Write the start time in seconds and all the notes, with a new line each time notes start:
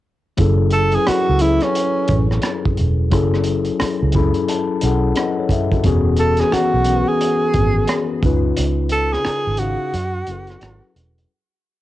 0.37 F#1 F#3 C#4 E4 G#4, kick, closed hi-hat
0.41 A4
0.71 A4, closed hi-hat
0.92 F#3 C#4 E4 G#4, closed hi-hat
0.96 G#4 B4
1.07 F#4, muted fingered electric bass stroke, cross-stick, closed hi-hat
1.29 C#2
1.39 F#3 C#4 E4, closed hi-hat
1.43 G#4 B4
1.60 C#4, cross-stick, closed hi-hat
1.75 closed hi-hat
2.08 A1, kick, closed hi-hat
2.31 cross-stick
2.42 cross-stick, closed hi-hat
2.65 kick
2.77 E1, closed hi-hat
3.11 F#1 F#3 C#4 E4 G#4 A4, kick, closed hi-hat
3.34 cross-stick
3.44 closed hi-hat
3.65 closed hi-hat
3.80 muted fingered electric bass stroke, cross-stick, closed hi-hat
4.02 C#2
4.12 F#3 C#4 E4 B5, kick, closed hi-hat
4.17 G#4 A4
4.34 closed hi-hat
4.48 A5, closed hi-hat
4.81 B1 F#3 C#4 E4 G#4 F#5, closed hi-hat
4.86 A4
5.15 B4 D#5 F#5, cross-stick, closed hi-hat
5.39 A4 C#5
5.49 E5, kick, closed hi-hat
5.71 F#4 A4, kick, closed hi-hat
5.84 E1 E3 B3 C#4 F#4 G#4, kick, closed hi-hat
6.17 A4, closed hi-hat
6.37 E3 B3 G#4, cross-stick, closed hi-hat
6.42 C#4 F#4 B4
6.52 F#4, muted fingered electric bass stroke, cross-stick, closed hi-hat
6.74 B1
6.85 E3 B3 C#4, closed hi-hat
6.89 F#4 A#4
6.96 B4
7.09 G#4
7.21 closed hi-hat
7.54 G#1, kick, closed hi-hat
7.88 cross-stick, closed hi-hat
8.22 C#2 C#3 C#4 D#4 F4 B4, kick, closed hi-hat
8.57 C#2, closed hi-hat
8.89 A4, closed hi-hat
9.13 G#4, cross-stick
9.25 muted fingered electric bass stroke, cross-stick, closed hi-hat
9.47 G#1
9.57 C#3 C#4 D#4 F#4, closed hi-hat
9.62 G#4 F5
9.94 F#2, closed hi-hat
10.27 F#1 F#3 C#4 E4 G#4, closed hi-hat
10.31 A4 B4
10.47 cross-stick, closed hi-hat
10.61 G#1, cross-stick, closed hi-hat
10.96 E1, closed hi-hat
11.18 closed hi-hat